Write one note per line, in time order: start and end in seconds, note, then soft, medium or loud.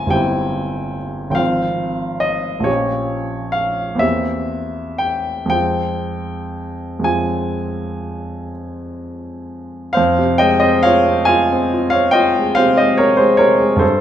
0.00 0.06 G1 medium
0.00 0.09 G3 soft
0.00 0.10 C4 soft
0.00 0.12 E4 soft
0.00 0.13 G#5 loud
0.00 1.42 A#5 loud
0.00 1.42 C6 medium
0.06 1.32 G1 medium
0.06 1.33 G3 soft
0.06 1.33 C4 soft
0.06 0.97 G5 medium
0.12 1.35 E4 soft
1.30 2.59 G#1 medium
1.30 2.60 F3 soft
1.30 1.39 G5 medium
1.34 2.61 C4 soft
1.34 2.62 F4 soft
1.34 2.22 F5 medium
2.20 2.66 D#5 medium
2.60 3.95 A#1 medium
2.60 3.96 F3 soft
2.60 3.97 C#4 soft
2.64 3.98 G4 soft
2.64 3.55 C#5 medium
3.52 4.01 F5 medium
3.95 5.46 E2 medium
3.95 5.47 A#3 soft
3.95 5.47 C4 soft
3.99 5.49 G4 soft
3.99 5.00 E5 medium
4.98 5.48 G5 medium
5.46 6.98 F2 soft
5.46 7.00 G#3 soft
5.46 7.01 C4 soft
5.50 7.02 F4 soft
5.50 7.05 G5 medium
6.99 9.90 F2 soft
6.99 9.91 G#3 soft
6.99 9.92 C4 soft
7.04 9.93 F4 soft
7.04 8.52 G#5 medium
9.93 13.78 F2 medium
9.93 10.37 C5 medium
9.93 10.39 F5 medium
10.19 10.55 C3 medium
10.38 10.77 G#3 medium
10.38 10.58 D#5 medium
10.38 10.62 G5 loud
10.60 10.99 C4 medium
10.60 10.83 C5 medium
10.60 10.84 D#5 medium
10.83 11.21 F4 medium
10.83 11.25 C#5 medium
10.83 11.25 F5 loud
11.08 11.43 C4 medium
11.25 11.64 F4 medium
11.25 11.89 F5 medium
11.25 11.92 G#5 medium
11.52 11.86 C4 medium
11.74 12.08 F4 medium
11.90 12.28 C4 medium
11.90 12.13 C#5 medium
11.90 12.14 F5 medium
12.11 12.50 F4 medium
12.11 12.54 D#5 medium
12.11 12.56 G5 loud
12.39 12.72 G#3 medium
12.55 12.92 C3 medium
12.55 12.77 C5 medium
12.55 12.78 F5 loud
12.77 13.13 G#3 medium
12.77 12.98 C5 medium
12.77 12.99 D#5 medium
12.97 13.33 C3 medium
12.97 13.18 A#4 medium
12.97 13.19 C#5 medium
13.17 13.53 G#3 medium
13.17 13.38 G#4 medium
13.17 13.39 C5 medium
13.37 13.74 C3 medium
13.37 13.78 A#4 medium
13.37 13.80 C#5 medium
13.61 13.82 G#3 medium
13.76 14.01 G2 medium
13.76 14.01 A4 medium
13.76 14.01 C5 medium